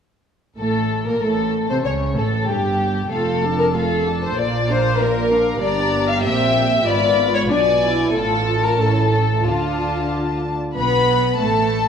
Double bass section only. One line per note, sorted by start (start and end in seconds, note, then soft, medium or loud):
0.59 1.03 A1 soft
1.23 1.69 A1 soft
1.85 2.16 C#2 soft
2.17 2.49 A1 soft
2.48 3.12 G1 soft
3.11 4.33 F1 soft
4.37 5.62 A#1 medium
5.62 6.20 G1 medium
6.23 6.87 A#1 soft
6.86 7.49 G#1 medium
7.50 8.14 B1 medium
8.14 8.77 A1 medium
8.78 9.43 A1 soft
9.44 10.57 D2 soft
10.77 11.37 B1 medium
11.41 11.88 A1 medium